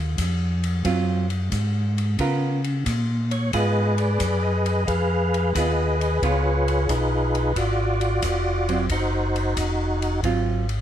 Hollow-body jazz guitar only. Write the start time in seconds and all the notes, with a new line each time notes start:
0.85 F#3 C4 F4
2.20 B3 F4 A#4
3.54 B3 F4
5.56 B3 F4
6.23 B3 F4
8.69 F#3 C4
10.24 F#3 C4 F4